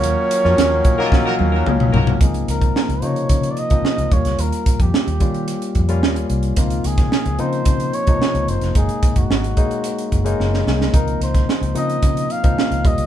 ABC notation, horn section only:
X:1
M:4/4
L:1/16
Q:1/4=110
K:Db
V:1 name="Horn section"
z6 z [EGB] z [EGB] z [EGB] z2 [EGB]2 | z16 | z16 | z16 |
z16 | z16 |]